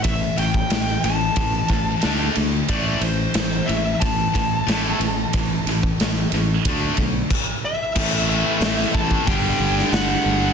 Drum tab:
CC |----------------|----------------|------------x---|x---------------|
RD |x-x-x-x-x-x-x-x-|x-x-x-x-x-x-x-x-|x-x-x-x-x-x-----|----------------|
HH |----------------|----------------|----------------|----o---o---o---|
SD |----o-------o---|----o-------o---|----o-----------|----o------oo---|
BD |o--o----o-o-----|o-------o-o-----|o--o----o-o-o---|o-----ooo-------|